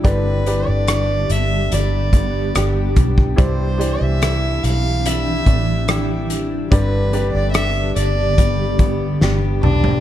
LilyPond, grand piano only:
<<
  \new Staff \with { instrumentName = "Grand piano" } { \time 4/4 \key g \mixolydian \tempo 4 = 72 <d' g' b' d''>8 <d' g' b' d''>2 r4. | <e' g' c'' d''>8 <e g' c'' d''>2 r4. | <d' g' b' d''>8 <d' g' b' d''>2 r4. | }
  \new Staff \with { instrumentName = "Grand piano" } { \clef bass \time 4/4 \key g \mixolydian <g, d>4. r2 r8 | g,4. r2 r8 | <g, d>4. r2 r8 | }
>>